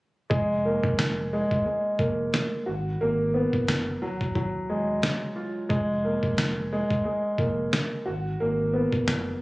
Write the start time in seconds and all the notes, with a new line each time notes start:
0.30 F1 G#3, kick
0.65 A#3
0.84 F1, kick
0.99 snare
1.33 G#3
1.51 D#1, kick
1.66 G#3
1.99 F1 A#3, kick
2.34 snare
2.66 G#1 F#4
3.01 G#1 A#3
3.34 B3
3.53 F#1, kick
3.68 snare
4.02 D#1 F#3
4.21 kick
4.35 F#3, kick
4.70 D#1 G#3
5.03 snare
5.36 F4
5.69 F1 G#3, kick
6.05 A#3
6.23 F1, kick
6.38 snare
6.73 G#3
6.90 D#1, kick
7.05 G#3
7.38 F1 A#3, kick
7.73 snare
8.06 G#1 F#4
8.40 G#1 A#3
8.73 B3
8.93 F#1, kick
9.08 snare